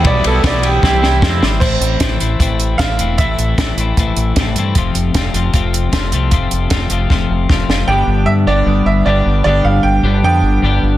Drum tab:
CC |--------|x-------|--------|--------|
RD |xxxx----|--------|--------|--------|
HH |--------|-xxxxxxx|xxxxxxxx|xxxxxxxx|
SD |--o-oooo|--o---o-|--o---o-|--o---o-|
BD |o-o-o-o-|o-o-o-o-|o-o-o-o-|o-o-o-o-|

CC |--------|--------|--------|
RD |--------|--------|--------|
HH |xxxx----|--------|--------|
SD |--o-o-oo|--------|--------|
BD |o-o-o-o-|--------|--------|